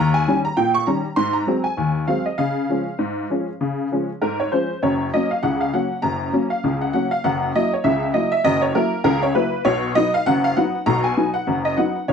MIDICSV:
0, 0, Header, 1, 2, 480
1, 0, Start_track
1, 0, Key_signature, -5, "major"
1, 0, Tempo, 606061
1, 925, Time_signature, 2, 2, 24, 8
1, 3818, Key_signature, 6, "major"
1, 9605, End_track
2, 0, Start_track
2, 0, Title_t, "Honky-tonk piano"
2, 0, Program_c, 0, 3
2, 0, Note_on_c, 0, 39, 77
2, 0, Note_on_c, 0, 82, 99
2, 106, Note_off_c, 0, 82, 0
2, 111, Note_on_c, 0, 80, 85
2, 176, Note_off_c, 0, 39, 0
2, 220, Note_on_c, 0, 51, 45
2, 224, Note_on_c, 0, 55, 48
2, 226, Note_on_c, 0, 61, 49
2, 299, Note_off_c, 0, 80, 0
2, 348, Note_off_c, 0, 51, 0
2, 351, Note_off_c, 0, 55, 0
2, 353, Note_off_c, 0, 61, 0
2, 354, Note_on_c, 0, 82, 81
2, 450, Note_on_c, 0, 79, 86
2, 452, Note_off_c, 0, 82, 0
2, 452, Note_on_c, 0, 46, 66
2, 584, Note_off_c, 0, 79, 0
2, 589, Note_on_c, 0, 85, 85
2, 653, Note_off_c, 0, 46, 0
2, 687, Note_on_c, 0, 82, 70
2, 689, Note_off_c, 0, 85, 0
2, 689, Note_on_c, 0, 51, 41
2, 693, Note_on_c, 0, 61, 44
2, 695, Note_on_c, 0, 55, 41
2, 820, Note_off_c, 0, 51, 0
2, 823, Note_off_c, 0, 61, 0
2, 824, Note_off_c, 0, 55, 0
2, 878, Note_off_c, 0, 82, 0
2, 921, Note_on_c, 0, 84, 88
2, 925, Note_on_c, 0, 44, 70
2, 1055, Note_on_c, 0, 82, 74
2, 1060, Note_off_c, 0, 84, 0
2, 1129, Note_off_c, 0, 44, 0
2, 1165, Note_on_c, 0, 54, 45
2, 1168, Note_on_c, 0, 56, 42
2, 1174, Note_on_c, 0, 60, 49
2, 1286, Note_off_c, 0, 82, 0
2, 1297, Note_off_c, 0, 54, 0
2, 1298, Note_on_c, 0, 80, 71
2, 1300, Note_off_c, 0, 56, 0
2, 1304, Note_off_c, 0, 60, 0
2, 1405, Note_on_c, 0, 39, 57
2, 1575, Note_off_c, 0, 80, 0
2, 1609, Note_off_c, 0, 39, 0
2, 1644, Note_on_c, 0, 77, 64
2, 1646, Note_on_c, 0, 54, 35
2, 1651, Note_on_c, 0, 56, 35
2, 1656, Note_on_c, 0, 60, 34
2, 1779, Note_off_c, 0, 54, 0
2, 1782, Note_off_c, 0, 56, 0
2, 1782, Note_off_c, 0, 77, 0
2, 1786, Note_off_c, 0, 60, 0
2, 1787, Note_on_c, 0, 75, 52
2, 1884, Note_on_c, 0, 77, 70
2, 1889, Note_off_c, 0, 75, 0
2, 1890, Note_on_c, 0, 49, 65
2, 2094, Note_off_c, 0, 49, 0
2, 2134, Note_on_c, 0, 53, 39
2, 2138, Note_on_c, 0, 56, 39
2, 2142, Note_on_c, 0, 61, 40
2, 2265, Note_off_c, 0, 53, 0
2, 2268, Note_off_c, 0, 56, 0
2, 2271, Note_off_c, 0, 61, 0
2, 2365, Note_on_c, 0, 44, 56
2, 2573, Note_off_c, 0, 44, 0
2, 2616, Note_on_c, 0, 53, 34
2, 2618, Note_on_c, 0, 56, 31
2, 2623, Note_on_c, 0, 61, 35
2, 2748, Note_off_c, 0, 53, 0
2, 2749, Note_off_c, 0, 56, 0
2, 2753, Note_off_c, 0, 61, 0
2, 2857, Note_on_c, 0, 49, 62
2, 3061, Note_off_c, 0, 49, 0
2, 3104, Note_on_c, 0, 53, 39
2, 3108, Note_on_c, 0, 56, 38
2, 3108, Note_on_c, 0, 61, 35
2, 3234, Note_off_c, 0, 53, 0
2, 3237, Note_off_c, 0, 56, 0
2, 3237, Note_off_c, 0, 61, 0
2, 3238, Note_off_c, 0, 77, 0
2, 3339, Note_on_c, 0, 70, 68
2, 3343, Note_on_c, 0, 44, 57
2, 3475, Note_off_c, 0, 70, 0
2, 3482, Note_on_c, 0, 73, 64
2, 3546, Note_off_c, 0, 44, 0
2, 3579, Note_on_c, 0, 72, 61
2, 3582, Note_off_c, 0, 73, 0
2, 3585, Note_on_c, 0, 53, 36
2, 3585, Note_on_c, 0, 56, 30
2, 3589, Note_on_c, 0, 61, 36
2, 3715, Note_off_c, 0, 53, 0
2, 3716, Note_off_c, 0, 56, 0
2, 3718, Note_off_c, 0, 61, 0
2, 3771, Note_off_c, 0, 72, 0
2, 3822, Note_on_c, 0, 42, 64
2, 3823, Note_on_c, 0, 30, 56
2, 3823, Note_on_c, 0, 73, 72
2, 4013, Note_off_c, 0, 73, 0
2, 4025, Note_off_c, 0, 42, 0
2, 4026, Note_off_c, 0, 30, 0
2, 4067, Note_on_c, 0, 75, 71
2, 4072, Note_on_c, 0, 54, 37
2, 4074, Note_on_c, 0, 58, 40
2, 4080, Note_on_c, 0, 61, 44
2, 4200, Note_off_c, 0, 54, 0
2, 4200, Note_off_c, 0, 75, 0
2, 4202, Note_off_c, 0, 58, 0
2, 4204, Note_on_c, 0, 77, 61
2, 4206, Note_off_c, 0, 61, 0
2, 4298, Note_on_c, 0, 78, 73
2, 4302, Note_on_c, 0, 49, 59
2, 4303, Note_off_c, 0, 77, 0
2, 4304, Note_on_c, 0, 37, 56
2, 4435, Note_off_c, 0, 78, 0
2, 4440, Note_on_c, 0, 77, 65
2, 4504, Note_off_c, 0, 49, 0
2, 4506, Note_off_c, 0, 37, 0
2, 4541, Note_off_c, 0, 77, 0
2, 4543, Note_on_c, 0, 78, 70
2, 4545, Note_on_c, 0, 54, 36
2, 4550, Note_on_c, 0, 58, 33
2, 4552, Note_on_c, 0, 61, 36
2, 4676, Note_off_c, 0, 54, 0
2, 4679, Note_off_c, 0, 58, 0
2, 4680, Note_off_c, 0, 61, 0
2, 4769, Note_off_c, 0, 78, 0
2, 4770, Note_on_c, 0, 82, 78
2, 4773, Note_on_c, 0, 42, 64
2, 4776, Note_on_c, 0, 30, 57
2, 4979, Note_off_c, 0, 42, 0
2, 4981, Note_off_c, 0, 30, 0
2, 5014, Note_on_c, 0, 54, 41
2, 5017, Note_on_c, 0, 58, 43
2, 5019, Note_on_c, 0, 61, 43
2, 5131, Note_off_c, 0, 82, 0
2, 5147, Note_off_c, 0, 54, 0
2, 5149, Note_off_c, 0, 58, 0
2, 5150, Note_on_c, 0, 77, 64
2, 5151, Note_off_c, 0, 61, 0
2, 5257, Note_on_c, 0, 49, 60
2, 5260, Note_on_c, 0, 37, 58
2, 5344, Note_off_c, 0, 77, 0
2, 5397, Note_on_c, 0, 78, 59
2, 5461, Note_off_c, 0, 49, 0
2, 5463, Note_off_c, 0, 37, 0
2, 5480, Note_off_c, 0, 78, 0
2, 5492, Note_on_c, 0, 78, 72
2, 5497, Note_on_c, 0, 54, 37
2, 5501, Note_on_c, 0, 58, 32
2, 5504, Note_on_c, 0, 61, 40
2, 5629, Note_off_c, 0, 54, 0
2, 5631, Note_off_c, 0, 78, 0
2, 5632, Note_off_c, 0, 58, 0
2, 5633, Note_on_c, 0, 77, 70
2, 5634, Note_off_c, 0, 61, 0
2, 5735, Note_on_c, 0, 78, 81
2, 5736, Note_on_c, 0, 42, 71
2, 5737, Note_off_c, 0, 77, 0
2, 5737, Note_on_c, 0, 30, 62
2, 5928, Note_off_c, 0, 78, 0
2, 5940, Note_off_c, 0, 42, 0
2, 5941, Note_off_c, 0, 30, 0
2, 5983, Note_on_c, 0, 75, 80
2, 5984, Note_on_c, 0, 54, 43
2, 5989, Note_on_c, 0, 58, 40
2, 5993, Note_on_c, 0, 64, 47
2, 6114, Note_off_c, 0, 54, 0
2, 6116, Note_off_c, 0, 75, 0
2, 6117, Note_off_c, 0, 58, 0
2, 6120, Note_off_c, 0, 64, 0
2, 6124, Note_on_c, 0, 73, 60
2, 6209, Note_on_c, 0, 76, 81
2, 6211, Note_on_c, 0, 49, 62
2, 6214, Note_on_c, 0, 37, 64
2, 6222, Note_off_c, 0, 73, 0
2, 6403, Note_off_c, 0, 76, 0
2, 6417, Note_off_c, 0, 49, 0
2, 6418, Note_off_c, 0, 37, 0
2, 6446, Note_on_c, 0, 75, 73
2, 6448, Note_on_c, 0, 54, 40
2, 6454, Note_on_c, 0, 58, 38
2, 6456, Note_on_c, 0, 64, 46
2, 6582, Note_off_c, 0, 54, 0
2, 6586, Note_off_c, 0, 58, 0
2, 6587, Note_off_c, 0, 64, 0
2, 6587, Note_off_c, 0, 75, 0
2, 6587, Note_on_c, 0, 76, 80
2, 6686, Note_on_c, 0, 42, 75
2, 6688, Note_on_c, 0, 75, 97
2, 6692, Note_off_c, 0, 76, 0
2, 6692, Note_on_c, 0, 30, 71
2, 6823, Note_on_c, 0, 73, 76
2, 6828, Note_off_c, 0, 75, 0
2, 6893, Note_off_c, 0, 42, 0
2, 6896, Note_off_c, 0, 30, 0
2, 6930, Note_off_c, 0, 73, 0
2, 6930, Note_on_c, 0, 70, 77
2, 6933, Note_on_c, 0, 54, 42
2, 6938, Note_on_c, 0, 58, 48
2, 6941, Note_on_c, 0, 64, 53
2, 7064, Note_off_c, 0, 54, 0
2, 7068, Note_off_c, 0, 58, 0
2, 7071, Note_off_c, 0, 64, 0
2, 7123, Note_off_c, 0, 70, 0
2, 7161, Note_on_c, 0, 70, 87
2, 7162, Note_on_c, 0, 37, 72
2, 7165, Note_on_c, 0, 49, 73
2, 7303, Note_off_c, 0, 70, 0
2, 7306, Note_on_c, 0, 73, 78
2, 7369, Note_off_c, 0, 37, 0
2, 7371, Note_off_c, 0, 49, 0
2, 7404, Note_on_c, 0, 71, 72
2, 7407, Note_on_c, 0, 54, 39
2, 7410, Note_off_c, 0, 73, 0
2, 7412, Note_on_c, 0, 58, 39
2, 7414, Note_on_c, 0, 64, 47
2, 7540, Note_off_c, 0, 54, 0
2, 7543, Note_off_c, 0, 58, 0
2, 7545, Note_off_c, 0, 64, 0
2, 7634, Note_off_c, 0, 71, 0
2, 7640, Note_on_c, 0, 73, 88
2, 7641, Note_on_c, 0, 35, 70
2, 7641, Note_on_c, 0, 47, 78
2, 7848, Note_off_c, 0, 35, 0
2, 7848, Note_off_c, 0, 47, 0
2, 7872, Note_off_c, 0, 73, 0
2, 7883, Note_on_c, 0, 75, 94
2, 7886, Note_on_c, 0, 54, 47
2, 7893, Note_on_c, 0, 59, 45
2, 7893, Note_on_c, 0, 63, 53
2, 8018, Note_off_c, 0, 54, 0
2, 8022, Note_off_c, 0, 75, 0
2, 8023, Note_off_c, 0, 59, 0
2, 8023, Note_off_c, 0, 63, 0
2, 8032, Note_on_c, 0, 77, 83
2, 8129, Note_on_c, 0, 78, 98
2, 8131, Note_off_c, 0, 77, 0
2, 8131, Note_on_c, 0, 30, 66
2, 8132, Note_on_c, 0, 42, 71
2, 8264, Note_off_c, 0, 78, 0
2, 8270, Note_on_c, 0, 77, 82
2, 8332, Note_off_c, 0, 30, 0
2, 8333, Note_off_c, 0, 42, 0
2, 8367, Note_on_c, 0, 78, 79
2, 8368, Note_on_c, 0, 54, 42
2, 8370, Note_off_c, 0, 77, 0
2, 8373, Note_on_c, 0, 59, 43
2, 8375, Note_on_c, 0, 63, 46
2, 8500, Note_off_c, 0, 54, 0
2, 8503, Note_off_c, 0, 59, 0
2, 8504, Note_off_c, 0, 63, 0
2, 8559, Note_off_c, 0, 78, 0
2, 8602, Note_on_c, 0, 82, 100
2, 8604, Note_on_c, 0, 35, 69
2, 8607, Note_on_c, 0, 47, 76
2, 8741, Note_off_c, 0, 82, 0
2, 8742, Note_on_c, 0, 80, 72
2, 8809, Note_off_c, 0, 35, 0
2, 8811, Note_off_c, 0, 47, 0
2, 8848, Note_on_c, 0, 54, 42
2, 8849, Note_on_c, 0, 59, 42
2, 8850, Note_on_c, 0, 63, 49
2, 8935, Note_off_c, 0, 80, 0
2, 8979, Note_on_c, 0, 78, 78
2, 8980, Note_off_c, 0, 54, 0
2, 8980, Note_off_c, 0, 59, 0
2, 8981, Note_off_c, 0, 63, 0
2, 9085, Note_on_c, 0, 42, 64
2, 9086, Note_on_c, 0, 30, 64
2, 9173, Note_off_c, 0, 78, 0
2, 9227, Note_on_c, 0, 75, 76
2, 9290, Note_off_c, 0, 30, 0
2, 9290, Note_off_c, 0, 42, 0
2, 9324, Note_on_c, 0, 78, 70
2, 9327, Note_on_c, 0, 54, 38
2, 9329, Note_off_c, 0, 75, 0
2, 9330, Note_on_c, 0, 59, 31
2, 9336, Note_on_c, 0, 63, 40
2, 9459, Note_off_c, 0, 54, 0
2, 9461, Note_off_c, 0, 59, 0
2, 9466, Note_off_c, 0, 63, 0
2, 9554, Note_off_c, 0, 78, 0
2, 9570, Note_on_c, 0, 73, 72
2, 9573, Note_on_c, 0, 49, 68
2, 9575, Note_on_c, 0, 37, 59
2, 9605, Note_off_c, 0, 37, 0
2, 9605, Note_off_c, 0, 49, 0
2, 9605, Note_off_c, 0, 73, 0
2, 9605, End_track
0, 0, End_of_file